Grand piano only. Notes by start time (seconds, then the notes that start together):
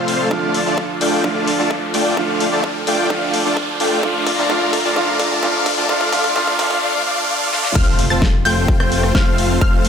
Already playing: C3 F3 A3 F4
0.30 D3 F3 A3 F4
1.23 D3 F3 A3 F4
2.16 D3 F3 A3 F4
3.09 D3 F3 A3 F4
4.02 D3 F3 A3 F4
4.49 D3 F3 A3 F4
4.95 D3 F3 A3 F4
5.42 D3 F3 A3 F4
5.88 D3 F3 A3 F4
6.11 D3 F3 A3 F4
6.35 D3 F3 A3 F4
6.58 D3 F3 A3 F4